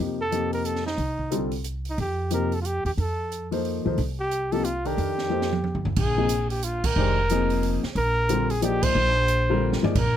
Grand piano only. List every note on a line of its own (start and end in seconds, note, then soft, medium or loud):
0.00 0.17 C3 soft
0.00 0.18 F3 soft
0.00 0.18 A#3 soft
0.00 0.18 D#4 soft
0.00 0.18 G4 medium
0.31 0.81 C3 soft
0.31 0.82 F3 soft
0.31 0.82 A#3 medium
0.31 0.82 D#4 medium
0.31 0.82 G4 medium
1.30 1.50 D3 medium
1.30 1.50 G3 medium
1.30 1.50 C4 medium
1.30 1.50 F4 soft
1.30 1.50 A4 medium
2.30 2.50 C3 medium
2.30 2.50 F3 medium
2.30 2.50 A#3 medium
2.30 2.50 D#4 medium
2.30 2.51 G4 medium
3.51 3.83 F3 medium
3.51 3.83 A#3 medium
3.51 3.83 D#4 medium
3.51 3.83 A4 medium
3.51 3.84 C5 medium
3.85 3.96 F3 medium
3.85 3.97 A#3 medium
3.85 3.97 D#4 medium
3.85 3.97 A4 medium
3.85 3.97 C5 medium
4.52 4.63 C3 medium
4.52 4.63 F3 medium
4.52 4.64 A#3 medium
4.52 4.63 D#4 medium
4.52 4.64 G4 medium
4.85 5.28 D#3 medium
4.85 5.28 D4 medium
4.85 5.29 G4 medium
4.85 5.28 A4 medium
4.85 5.29 A#4 medium
5.29 5.49 F3 medium
5.29 5.49 A#3 soft
5.29 5.49 D#4 medium
5.29 5.50 A4 medium
5.29 5.50 C5 medium
6.17 6.29 C3 medium
6.17 6.29 F3 medium
6.17 6.29 A#3 medium
6.17 6.29 D#4 medium
6.17 6.29 G#4 medium
6.96 7.15 D#3 medium
6.96 7.15 G#3 medium
6.96 7.15 D4 medium
6.96 7.16 G4 medium
6.96 7.16 C5 medium
7.30 7.79 C3 medium
7.30 7.80 F3 medium
7.30 7.80 A#3 medium
7.30 7.80 D#4 medium
7.30 7.80 G#4 medium
8.28 8.47 D3 medium
8.28 8.48 G3 medium
8.28 8.48 C4 medium
8.28 8.48 F4 medium
8.28 8.48 A#4 medium
8.62 9.12 F3 medium
8.62 9.12 A#3 medium
8.62 9.12 D#4 medium
8.62 9.12 G#4 medium
8.62 9.12 D5 medium
9.49 9.80 D3 medium
9.49 9.81 G3 medium
9.49 9.81 C4 medium
9.49 9.81 F4 medium
9.49 9.81 A#4 medium
9.82 9.94 F3 medium
9.82 9.94 A#3 medium
9.82 9.94 D#4 medium
9.82 9.94 G#4 medium
9.82 9.95 D5 medium